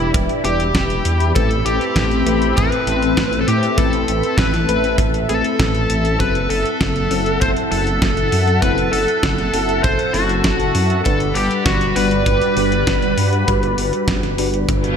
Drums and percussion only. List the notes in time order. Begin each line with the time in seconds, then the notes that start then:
0.14 kick, closed hi-hat
0.29 closed hi-hat
0.45 closed hi-hat
0.60 closed hi-hat
0.75 kick, snare, closed hi-hat
0.90 closed hi-hat
1.05 closed hi-hat
1.20 closed hi-hat
1.35 kick, closed hi-hat
1.51 closed hi-hat
1.66 closed hi-hat
1.81 closed hi-hat
1.96 kick, snare, closed hi-hat
2.11 closed hi-hat
2.27 closed hi-hat
2.42 closed hi-hat
2.57 kick, closed hi-hat
2.72 closed hi-hat
2.87 closed hi-hat
3.02 closed hi-hat
3.17 kick, snare, closed hi-hat
3.33 closed hi-hat
3.48 closed hi-hat
3.63 closed hi-hat
3.78 kick, closed hi-hat
3.93 closed hi-hat
4.08 closed hi-hat
4.23 closed hi-hat
4.38 kick, snare, closed hi-hat
4.54 snare, closed hi-hat
4.69 closed hi-hat
4.84 closed hi-hat
4.98 kick, closed hi-hat
5.14 closed hi-hat
5.29 closed hi-hat
5.44 closed hi-hat
5.60 kick, snare, closed hi-hat
5.75 closed hi-hat
5.90 closed hi-hat
6.05 closed hi-hat
6.20 kick, closed hi-hat
6.35 closed hi-hat
6.50 open hi-hat
6.66 closed hi-hat
6.81 kick, snare, closed hi-hat
6.96 closed hi-hat
7.11 open hi-hat
7.26 closed hi-hat
7.41 kick, closed hi-hat
7.57 closed hi-hat
7.72 open hi-hat
7.87 closed hi-hat
8.02 kick, snare, closed hi-hat
8.17 closed hi-hat
8.32 open hi-hat
8.47 closed hi-hat
8.62 kick, closed hi-hat
8.78 closed hi-hat
8.93 open hi-hat
9.08 closed hi-hat
9.23 kick, snare, closed hi-hat
9.38 snare, closed hi-hat
9.54 open hi-hat
9.69 closed hi-hat
9.84 kick, closed hi-hat
9.99 closed hi-hat
10.14 open hi-hat
10.29 closed hi-hat
10.44 kick, snare, closed hi-hat
10.60 closed hi-hat
10.75 open hi-hat
10.90 closed hi-hat
11.05 kick, closed hi-hat
11.20 closed hi-hat
11.35 open hi-hat
11.51 closed hi-hat
11.66 kick, snare, closed hi-hat
11.81 closed hi-hat
11.96 open hi-hat
12.11 closed hi-hat
12.26 kick, closed hi-hat
12.42 closed hi-hat
12.57 open hi-hat
12.72 closed hi-hat
12.87 kick, snare, closed hi-hat
13.02 closed hi-hat
13.18 open hi-hat
13.33 closed hi-hat
13.48 kick, closed hi-hat
13.63 closed hi-hat
13.78 open hi-hat
13.93 closed hi-hat
14.08 kick, snare, closed hi-hat
14.23 snare, closed hi-hat
14.38 open hi-hat
14.54 closed hi-hat
14.69 kick, closed hi-hat
14.84 closed hi-hat